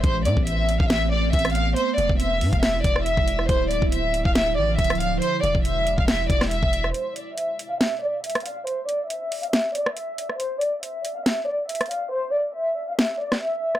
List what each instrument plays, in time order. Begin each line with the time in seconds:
Already playing: ambient pad B3
0.04 808-style bass A1, ambient pad A3 C4, violin section C5, kick, closed hi-hat
0.25 808-style bass A2, violin section D5, closed hi-hat
0.37 808-style bass A1, kick
0.47 violin section E5, closed hi-hat
0.69 closed hi-hat
0.80 808-style bass A1, violin section F5, kick
0.90 violin section E5, snare, closed hi-hat
1.12 violin section D5
1.33 808-style bass A1, violin section E5, kick, closed hi-hat
1.39 closed hi-hat
1.45 cross-stick, closed hi-hat
1.50 closed hi-hat
1.55 violin section F5, closed hi-hat
1.76 ambient pad G#3 E4, violin section C5, closed hi-hat
1.98 808-style bass E1, violin section D5, closed hi-hat
2.09 808-style bass E1, kick
2.20 violin section E5, closed hi-hat
2.41 808-style bass G#2, closed hi-hat, open hi-hat
2.53 808-style bass E1, violin section F5, kick, closed hi-hat
2.62 violin section E5, snare, closed hi-hat
2.84 808-style bass E1, violin section D5, kick, closed hi-hat
2.96 cross-stick
3.05 violin section E5, closed hi-hat
3.17 808-style bass E1, kick
3.28 closed hi-hat
3.39 cross-stick
3.49 808-style bass D1, ambient pad D3 F3, violin section C5, kick, closed hi-hat
3.71 violin section D5, closed hi-hat
3.82 808-style bass D1, kick
3.92 violin section E5, closed hi-hat
4.14 closed hi-hat
4.25 808-style bass D1, violin section F5, kick
4.35 violin section E5, snare, closed hi-hat
4.57 808-style bass A1, violin section D5
4.78 808-style bass D1, violin section E5, kick, closed hi-hat
4.84 closed hi-hat
4.90 cross-stick, closed hi-hat
4.95 closed hi-hat
5.00 violin section F5, closed hi-hat
5.21 ambient pad B2 G#3 E4, violin section C5, closed hi-hat
5.43 808-style bass E1, violin section D5, closed hi-hat
5.55 808-style bass E1, kick
5.64 violin section E5, closed hi-hat
5.87 closed hi-hat
5.98 808-style bass E1, violin section F5, kick
6.08 violin section E5, snare, closed hi-hat
6.30 808-style bass E1, violin section D5, kick, closed hi-hat
6.41 cross-stick, snare
6.51 violin section E5, closed hi-hat
6.63 808-style bass E1, kick
6.73 closed hi-hat
6.84 cross-stick
6.94 violin section C5, closed hi-hat
7.16 violin section D5, closed hi-hat
7.38 violin section E5, closed hi-hat
7.59 closed hi-hat
7.70 violin section F5
7.80 violin section E5, snare, closed hi-hat
8.02 violin section D5
8.24 violin section E5, closed hi-hat
8.30 closed hi-hat
8.35 cross-stick, closed hi-hat
8.40 closed hi-hat
8.45 violin section F5, closed hi-hat
8.67 violin section C5, closed hi-hat
8.88 violin section D5, closed hi-hat
9.10 violin section E5, closed hi-hat
9.32 closed hi-hat, open hi-hat
9.43 violin section F5, closed hi-hat
9.52 violin section E5, snare, closed hi-hat
9.75 violin section D5, closed hi-hat
9.86 cross-stick
9.96 violin section E5, closed hi-hat
10.18 closed hi-hat
10.30 cross-stick
10.39 violin section C5, closed hi-hat
10.61 violin section D5, closed hi-hat
10.83 violin section E5, closed hi-hat
11.05 closed hi-hat
11.15 violin section F5
11.26 violin section E5, snare, closed hi-hat
11.48 violin section D5
11.68 violin section E5, closed hi-hat
11.75 closed hi-hat
11.81 cross-stick, closed hi-hat
11.86 closed hi-hat
11.90 violin section F5, closed hi-hat
12.12 violin section C5
12.34 violin section D5
12.55 violin section E5
12.89 violin section F5
12.99 violin section E5, snare
13.21 violin section D5
13.32 cross-stick, snare
13.42 violin section E5
13.75 cross-stick